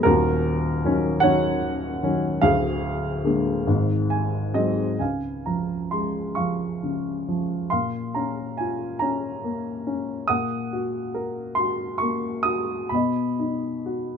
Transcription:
0.03 2.39 D#1 medium
0.03 2.39 D#2 medium
0.03 1.19 F#4 medium
0.03 1.25 A#4 medium
0.85 1.22 D#3 medium
0.85 1.22 F#3 soft
0.85 1.23 C#4 medium
1.20 2.00 D#3 soft
1.20 2.00 F#3 soft
1.20 2.01 C#4 medium
1.20 2.39 C#5 medium
1.20 2.45 F#5 medium
2.03 2.42 D#3 soft
2.03 2.42 F#3 soft
2.03 2.42 C#4 medium
2.41 3.63 D1 medium
2.41 3.63 D2 medium
2.41 4.07 G#4 medium
2.41 4.05 F5 medium
3.25 3.66 D3 soft
3.25 3.66 G#3 soft
3.25 3.66 A#3 soft
3.67 4.95 G#1 medium
3.67 4.95 G#2 medium
4.10 4.51 G#5 medium
4.54 4.98 F#3 soft
4.54 4.98 G#3 soft
4.54 4.98 C4 soft
4.54 4.96 D#5 medium
4.99 7.66 C#2 soft
4.99 6.33 F5 soft
4.99 5.46 G#5 soft
5.46 6.36 F3 soft
5.46 5.92 A#5 soft
5.91 7.67 G#3 soft
5.91 6.38 C6 soft
6.35 7.27 F3 soft
6.35 7.66 F5 soft
6.35 7.66 C#6 medium
6.83 7.69 C#3 soft
7.28 7.70 F3 soft
7.70 10.25 A#2 soft
7.70 8.96 F5 soft
7.70 8.15 C6 medium
8.15 9.00 C#4 soft
8.15 8.59 A#5 medium
8.57 10.26 F4 soft
8.57 9.01 G#5 medium
8.99 9.85 C#4 soft
8.99 9.91 A#5 medium
9.44 10.26 A#3 soft
9.87 10.28 C#4 soft
10.28 12.90 A#2 soft
10.28 11.55 F#5 medium
10.28 11.10 D#6 medium
10.73 11.57 F#4 soft
11.14 12.89 A#4 soft
11.55 12.44 F#4 soft
11.55 12.02 C6 medium
11.98 12.90 A#3 soft
11.98 12.47 C#6 medium
12.43 12.91 F#4 soft
12.43 12.92 D#6 medium
12.89 14.17 B2 soft
12.89 14.17 B5 medium
12.95 14.17 D#5 soft
13.39 14.17 D#4 soft
13.86 14.17 F#4 soft

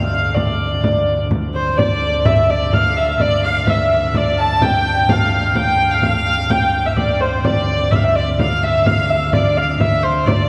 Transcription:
0.00 1.76 D2 medium
0.00 0.35 F5 medium
0.35 1.26 D5 medium
0.35 frame drum medium
0.84 frame drum medium
1.31 frame drum medium
1.54 1.76 C5 medium
1.54 1.78 C5 medium
1.77 7.42 D2 medium
1.77 2.27 D5 medium
1.77 2.26 D5 medium
1.77 frame drum medium
2.25 2.48 E5 medium
2.25 2.50 E5 medium
2.25 frame drum medium
2.48 2.71 D5 medium
2.48 2.74 D5 medium
2.72 3.16 F5 medium
2.72 2.97 F5 medium
2.72 frame drum medium
2.97 3.21 E5 medium
3.19 3.41 D5 medium
3.19 3.45 D5 loud
3.19 frame drum medium
3.43 3.65 F5 medium
3.43 3.70 F5 medium
3.67 3.89 E5 medium
3.67 3.94 E5 medium
3.67 frame drum medium
3.90 4.16 E5 medium
3.90 4.17 E5 medium
4.14 4.40 D5 medium
4.14 frame drum medium
4.38 4.63 A5 medium
4.38 4.65 A5 medium
4.61 5.11 G5 medium
4.61 5.12 G5 loud
4.61 frame drum medium
5.09 5.57 F5 medium
5.09 5.35 F5 medium
5.09 frame drum medium
5.35 5.45 F5 medium
5.55 5.92 G5 medium
5.55 5.94 G5 medium
5.55 frame drum medium
5.91 6.01 F5 medium
5.91 6.05 F5 medium
6.02 6.51 F5 medium
6.02 frame drum medium
6.49 6.87 G5 medium
6.49 6.86 G5 medium
6.49 frame drum medium
6.74 frame drum soft
6.85 6.96 E5 medium
6.85 6.97 E5 medium
6.97 7.21 D5 medium
6.97 7.22 D5 medium
6.97 frame drum medium
7.21 7.46 C5 medium
7.21 7.45 C5 medium
7.21 frame drum soft
7.44 10.49 D2 medium
7.44 7.93 D5 medium
7.44 7.92 D5 medium
7.44 frame drum medium
7.91 8.15 E5 medium
7.91 7.97 E5 medium
7.91 frame drum medium
7.95 8.04 F5 medium
8.04 8.15 E5 medium
8.15 8.26 D5 medium
8.15 8.37 D5 medium
8.39 8.65 F5 medium
8.39 8.63 F5 medium
8.39 frame drum medium
8.63 8.88 E5 medium
8.63 8.86 E5 medium
8.86 9.10 F5 medium
8.86 9.33 F5 medium
8.86 frame drum medium
9.10 9.33 E5 medium
9.33 9.57 D5 medium
9.33 9.58 D5 medium
9.33 frame drum medium
9.56 9.79 F5 medium
9.56 9.81 F5 medium
9.79 10.04 E5 medium
9.79 10.03 E5 medium
9.79 frame drum medium
10.03 10.27 C5 medium
10.26 10.49 D5 medium
10.26 frame drum medium

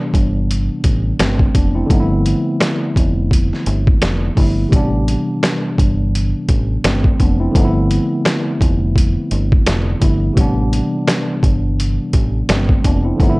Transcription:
0.00 1.14 C3 medium
0.00 1.15 E3 medium
0.00 1.16 G3 medium
0.00 1.17 B3 medium
0.00 1.18 D4 medium
0.14 0.68 G1 medium
0.14 kick medium
0.14 closed hi-hat medium
0.51 closed hi-hat loud
0.84 1.11 A1 medium
0.84 kick medium
0.84 closed hi-hat medium
1.20 1.47 G1 medium
1.20 1.54 A3 medium
1.20 1.53 C4 medium
1.20 snare loud
1.20 snare medium
1.20 closed hi-hat loud
1.39 kick medium
1.55 1.82 F1 medium
1.55 1.74 B3 medium
1.55 1.74 D4 medium
1.55 kick medium
1.55 closed hi-hat medium
1.75 2.09 C4 medium
1.75 1.99 E4 medium
1.86 4.31 D3 medium
1.86 4.32 F3 medium
1.86 4.33 A3 medium
1.86 kick loud
1.90 2.33 G1 loud
1.90 4.34 B3 medium
1.90 1.99 D#4 medium
1.90 closed hi-hat medium
2.00 4.37 E4 medium
2.26 closed hi-hat medium
2.61 snare loud
2.61 snare medium
2.61 closed hi-hat medium
2.96 3.50 F1 medium
2.96 kick medium
2.96 closed hi-hat medium
3.31 kick medium
3.31 closed hi-hat loud
3.53 snare soft
3.66 3.94 G1 medium
3.66 closed hi-hat medium
3.87 kick loud
4.02 4.29 F1 medium
4.02 snare loud
4.02 snare medium
4.02 closed hi-hat medium
4.35 4.64 G1 medium
4.35 4.71 D3 medium
4.35 4.72 F3 medium
4.35 4.72 A3 medium
4.35 4.73 B3 medium
4.35 4.73 E4 medium
4.35 kick medium
4.35 open hi-hat medium
4.69 5.15 A1 loud
4.69 6.78 C3 medium
4.69 6.79 E3 medium
4.69 6.80 G3 medium
4.69 kick loud
4.73 6.81 B3 medium
4.73 6.82 D4 medium
4.73 closed hi-hat medium
5.08 closed hi-hat medium
5.43 snare loud
5.43 snare medium
5.43 closed hi-hat medium
5.78 6.32 G1 medium
5.78 kick medium
5.78 closed hi-hat medium
6.15 closed hi-hat medium
6.49 6.76 A1 medium
6.49 kick medium
6.49 closed hi-hat medium
6.84 7.11 G1 medium
6.84 7.18 A3 medium
6.84 7.18 C4 medium
6.84 snare loud
6.84 snare medium
6.84 closed hi-hat loud
7.04 kick medium
7.19 7.47 F1 medium
7.19 7.39 B3 medium
7.19 7.39 D4 medium
7.19 kick loud
7.19 closed hi-hat medium
7.40 7.73 C4 medium
7.40 7.63 E4 medium
7.51 7.97 G1 loud
7.51 9.96 D3 medium
7.51 9.97 F3 medium
7.51 9.98 A3 medium
7.51 kick loud
7.55 9.99 B3 medium
7.55 7.64 D#4 medium
7.55 closed hi-hat medium
7.65 10.02 E4 medium
7.90 closed hi-hat medium
8.25 snare loud
8.25 snare medium
8.25 closed hi-hat medium
8.61 9.15 F1 medium
8.61 kick medium
8.61 closed hi-hat medium
8.95 kick loud
8.95 closed hi-hat loud
9.31 9.58 G1 medium
9.31 closed hi-hat medium
9.52 kick loud
9.66 9.94 F1 medium
9.66 snare loud
9.66 snare medium
9.66 closed hi-hat loud
10.00 10.29 G1 medium
10.00 10.36 D3 medium
10.00 10.37 F3 medium
10.00 10.37 A3 medium
10.00 10.37 B3 medium
10.00 10.38 E4 medium
10.00 kick medium
10.00 closed hi-hat medium
10.33 10.79 A1 loud
10.33 12.43 C3 medium
10.33 12.44 E3 medium
10.33 12.45 G3 medium
10.33 kick loud
10.33 closed hi-hat medium
10.39 12.46 B3 medium
10.39 12.47 D4 medium
10.73 closed hi-hat medium
11.07 snare loud
11.07 snare medium
11.07 closed hi-hat medium
11.43 11.97 G1 medium
11.43 kick medium
11.43 closed hi-hat medium
11.80 closed hi-hat loud
12.13 12.41 A1 medium
12.13 kick medium
12.13 closed hi-hat medium
12.49 12.76 G1 medium
12.49 12.83 A3 medium
12.49 12.83 C4 medium
12.49 snare loud
12.49 snare medium
12.49 closed hi-hat loud
12.69 kick medium
12.84 13.11 F1 medium
12.84 13.04 B3 medium
12.84 13.03 D4 medium
12.84 kick medium
12.84 closed hi-hat medium
13.04 13.38 C4 medium
13.04 13.28 E4 medium
13.16 13.40 G1 loud
13.16 13.40 D3 medium
13.16 13.40 F3 medium
13.16 13.40 A3 medium
13.16 kick loud
13.20 13.40 B3 medium
13.20 13.29 D#4 medium
13.20 closed hi-hat medium
13.29 13.40 E4 medium

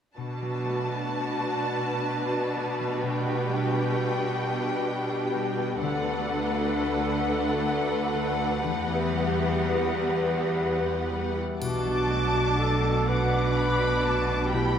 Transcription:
0.17 3.01 B2 soft
0.17 5.78 B2 soft
0.17 5.78 D4 soft
0.17 2.99 F#4 soft
0.17 5.78 B4 soft
0.17 2.99 A5 soft
0.42 2.79 F#3 soft
0.66 2.56 A3 soft
0.90 1.36 F#4 soft
1.14 1.61 D5 soft
1.37 1.85 F#4 soft
1.62 2.08 D5 soft
1.86 2.32 F#4 soft
2.10 3.93 D5 soft
2.33 3.07 F#4 soft
2.57 3.07 A3 soft
2.80 3.07 F#3 soft
3.03 5.85 B2 soft
3.03 5.78 G4 soft
3.03 5.82 G5 soft
3.26 5.57 B3 soft
3.48 5.34 G3 soft
3.71 4.17 G4 soft
3.94 4.40 D5 soft
4.18 4.64 G4 soft
4.42 4.87 D5 soft
4.65 5.11 G4 soft
4.89 8.69 D5 soft
5.12 5.86 G4 soft
5.35 5.86 G3 soft
5.58 9.48 B3 soft
5.81 8.65 D2 soft
5.81 8.68 D3 soft
5.81 8.60 D4 soft
5.81 8.60 A4 soft
5.81 11.37 B4 soft
5.81 11.37 F#5 soft
6.05 8.38 D4 soft
6.28 8.14 A3 soft
6.51 6.96 F#4 soft
6.75 7.20 B4 soft
6.97 7.43 F#4 soft
7.21 7.67 B4 soft
7.44 7.90 F#4 soft
7.68 9.60 B4 soft
7.91 9.36 F#4 soft
8.15 8.68 A3 soft
8.40 8.68 D4 soft
8.64 11.41 E2 medium
8.64 11.65 E3 soft
8.64 11.40 B3 soft
8.64 11.37 G4 medium
8.88 11.35 E4 soft
9.13 11.09 G3 soft
9.37 9.84 F#4 soft
9.62 10.08 B4 soft
9.85 10.33 F#4 soft
10.09 10.58 B4 soft
10.34 10.83 F#4 soft
10.59 14.49 B4 soft
10.84 12.33 F#4 soft
11.11 11.65 G3 soft
11.36 11.65 E4 soft
11.61 14.79 B1 soft
11.61 14.52 B2 soft
11.61 14.79 B2 soft
11.61 13.04 D4 soft
11.61 12.60 F#4 medium
11.61 13.05 A5 soft
11.61 13.05 D6 soft
11.61 triangle soft
11.85 14.28 F#3 soft
12.09 14.04 A3 soft
12.34 13.80 F#4 soft
12.59 13.10 A4 soft
12.84 13.32 A4 soft
13.07 14.49 D4 soft
13.07 14.53 B4 medium
13.07 14.57 F#5 soft
13.07 13.58 F#5 soft
13.07 14.51 D6 soft
13.33 14.57 A4 soft
13.58 14.06 B5 soft
13.81 14.57 F#4 soft
14.05 14.57 A3 soft
14.05 14.53 A5 soft
14.29 14.57 F#3 soft
14.52 14.79 B2 soft
14.52 14.79 E4 medium
14.52 14.79 G4 soft
14.52 14.79 G5 soft
14.52 14.79 B5 soft

